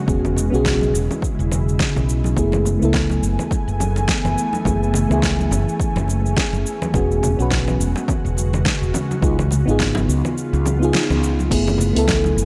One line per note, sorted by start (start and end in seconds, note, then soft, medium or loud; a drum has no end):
0.00 2.33 C#3 medium
0.00 2.33 G#3 medium
0.00 0.07 B3 medium
0.00 0.08 C#4 medium
0.00 0.09 F#4 medium
0.00 2.39 B4 medium
0.07 0.48 E1 medium
0.07 0.22 B3 medium
0.07 0.23 C#4 medium
0.07 2.34 E4 medium
0.07 0.23 F#4 medium
0.07 0.24 G#4 medium
0.07 kick loud
0.07 cabasa soft
0.25 low conga medium
0.25 cabasa soft
0.37 low conga medium
0.37 cabasa medium
0.50 0.90 B1 medium
0.50 2.32 B3 medium
0.50 2.33 C#4 medium
0.50 2.34 F#4 medium
0.50 cabasa soft
0.55 2.35 G#4 medium
0.65 kick medium
0.65 snare medium
0.65 low conga medium
0.65 cabasa soft
0.81 high conga medium
0.81 cabasa soft
0.94 1.07 E1 medium
0.94 cabasa medium
1.11 low conga medium
1.11 cabasa soft
1.22 kick medium
1.22 cabasa soft
1.39 1.76 E1 medium
1.39 cabasa soft
1.51 high conga medium
1.51 low conga medium
1.51 cabasa medium
1.69 cabasa soft
1.80 kick loud
1.80 snare medium
1.80 cabasa soft
1.96 2.34 B1 medium
1.96 low conga medium
1.96 cabasa soft
2.09 cabasa medium
2.24 high conga medium
2.24 cabasa soft
2.36 2.77 F#1 medium
2.36 6.90 E3 medium
2.36 2.77 A3 medium
2.36 6.90 A3 medium
2.36 4.63 B3 medium
2.36 2.78 B3 medium
2.36 2.78 E4 medium
2.36 2.79 G#4 medium
2.36 6.90 G#5 medium
2.36 kick loud
2.36 cabasa soft
2.52 muted conga soft
2.52 low conga medium
2.52 cabasa soft
2.65 low conga medium
2.65 cabasa medium
2.79 3.19 C#2 medium
2.79 4.61 A3 medium
2.79 4.62 B3 medium
2.79 4.63 E4 medium
2.79 cabasa soft
2.85 4.64 A4 medium
2.94 kick loud
2.94 snare medium
2.94 muted conga medium
2.94 low conga medium
2.94 cabasa soft
3.10 high conga medium
3.10 cabasa soft
3.23 3.36 F#1 medium
3.23 cabasa medium
3.39 low conga medium
3.39 cabasa soft
3.51 kick loud
3.51 muted conga medium
3.51 cabasa soft
3.68 4.05 F#1 medium
3.68 cabasa soft
3.80 high conga medium
3.80 low conga medium
3.80 cabasa medium
3.96 muted conga medium
3.96 cabasa soft
4.08 kick loud
4.08 snare loud
4.08 cabasa soft
4.25 4.35 F#1 medium
4.25 low conga medium
4.25 cabasa soft
4.38 cabasa medium
4.53 muted conga soft
4.53 high conga medium
4.53 cabasa soft
4.65 5.05 F#1 medium
4.65 4.80 A3 medium
4.65 4.81 B3 medium
4.65 6.92 C#4 medium
4.65 4.81 E4 medium
4.65 4.81 G#4 medium
4.65 kick loud
4.65 low conga medium
4.65 cabasa soft
4.83 cabasa soft
4.94 muted conga medium
4.94 low conga medium
4.94 cabasa medium
5.08 5.48 C#2 medium
5.08 6.90 A3 medium
5.08 6.91 B3 medium
5.08 6.92 E4 medium
5.08 low conga medium
5.08 cabasa soft
5.14 6.93 G#4 loud
5.23 kick medium
5.23 snare medium
5.23 cabasa soft
5.39 high conga medium
5.39 cabasa soft
5.51 5.65 F#1 medium
5.51 muted conga soft
5.51 low conga medium
5.51 cabasa medium
5.69 cabasa soft
5.80 kick loud
5.80 cabasa soft
5.96 6.33 F#1 medium
5.96 muted conga medium
5.96 low conga medium
5.96 cabasa soft
6.08 high conga medium
6.08 cabasa medium
6.26 cabasa soft
6.37 kick loud
6.37 snare medium
6.37 low conga medium
6.37 cabasa soft
6.53 6.63 F#1 medium
6.53 muted conga medium
6.53 cabasa soft
6.66 cabasa medium
6.82 high conga medium
6.82 low conga medium
6.82 cabasa soft
6.93 7.34 E1 loud
6.93 11.47 C#3 medium
6.93 9.20 G#3 medium
6.93 7.35 B3 medium
6.93 7.35 C#4 medium
6.93 9.20 F#4 medium
6.93 7.36 F#4 medium
6.93 7.36 G#4 medium
6.93 kick loud
6.93 muted conga medium
6.93 cabasa soft
7.11 cabasa soft
7.23 low conga medium
7.23 cabasa medium
7.37 7.76 B1 medium
7.37 9.19 B3 medium
7.37 9.19 C#4 medium
7.37 9.20 F#4 medium
7.37 cabasa soft
7.42 9.21 B4 medium
7.51 kick medium
7.51 snare medium
7.51 muted conga medium
7.51 cabasa soft
7.68 high conga medium
7.68 low conga medium
7.68 cabasa soft
7.80 7.93 E1 medium
7.80 cabasa medium
7.96 muted conga medium
7.96 cabasa soft
8.08 kick loud
8.08 low conga medium
8.08 cabasa soft
8.25 8.62 E1 medium
8.25 cabasa soft
8.37 high conga medium
8.37 cabasa medium
8.53 muted conga medium
8.53 low conga medium
8.53 cabasa soft
8.65 kick medium
8.65 snare medium
8.65 cabasa soft
8.82 8.92 E1 medium
8.82 cabasa soft
8.94 muted conga medium
8.94 low conga medium
8.94 cabasa medium
9.11 high conga medium
9.11 cabasa soft
9.21 9.63 C#2 loud
9.21 9.37 B3 medium
9.21 11.49 B3 medium
9.21 9.37 D#4 medium
9.21 11.49 F4 medium
9.21 9.38 F4 medium
9.21 9.38 G#4 medium
9.21 kick loud
9.21 cabasa soft
9.39 low conga medium
9.39 cabasa soft
9.51 muted conga soft
9.51 low conga medium
9.51 cabasa medium
9.66 10.05 G#1 medium
9.66 10.78 B3 medium
9.66 10.78 D#4 medium
9.66 10.79 F4 medium
9.66 cabasa soft
9.71 10.80 G#4 medium
9.80 kick medium
9.80 snare loud
9.80 low conga medium
9.80 cabasa soft
9.95 muted conga medium
9.95 high conga medium
9.95 cabasa soft
10.08 10.22 C#2 medium
10.08 cabasa medium
10.25 low conga medium
10.25 cabasa soft
10.38 cabasa soft
10.53 10.91 C#2 medium
10.53 muted conga medium
10.53 cabasa soft
10.65 high conga medium
10.65 low conga medium
10.65 cabasa medium
10.79 11.47 B3 medium
10.79 11.48 D#4 medium
10.79 11.49 F4 medium
10.79 cabasa soft
10.84 11.50 G#4 loud
10.93 snare loud
10.93 muted conga medium
10.93 cabasa soft
11.10 11.48 C#2 medium
11.10 low conga medium
11.10 cabasa soft
11.23 cabasa medium
11.39 high conga medium
11.39 cabasa soft
11.50 11.91 F#1 loud
11.50 12.45 E3 medium
11.50 11.91 A3 medium
11.50 12.45 A3 medium
11.50 11.92 B3 medium
11.50 12.45 B3 medium
11.50 11.92 E4 medium
11.50 11.93 G#4 medium
11.50 12.45 G#5 medium
11.50 kick loud
11.50 open hi-hat soft
11.50 crash loud
11.50 cabasa soft
11.67 muted conga medium
11.67 low conga medium
11.67 cabasa soft
11.78 low conga medium
11.78 cabasa medium
11.93 12.33 C#2 medium
11.93 12.45 A3 medium
11.93 12.45 B3 medium
11.93 12.45 E4 medium
11.93 open hi-hat medium
11.93 cabasa soft
11.98 12.45 A4 loud
12.08 kick loud
12.08 snare medium
12.08 open hi-hat soft
12.08 muted conga medium
12.08 low conga medium
12.08 cabasa soft
12.24 high conga medium
12.24 cabasa soft
12.37 12.45 F#1 medium
12.37 cabasa medium